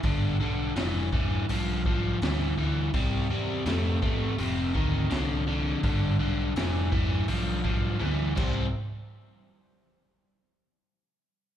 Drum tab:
CC |--------|--------|-------x|--------|
HH |o-o-o-o-|o-o-o-o-|o-o-o---|--------|
SD |--o---o-|--o---o-|--o-----|--------|
T1 |--------|--------|------o-|--------|
BD |o--o-o--|o--o-o--|o--o-o-o|--------|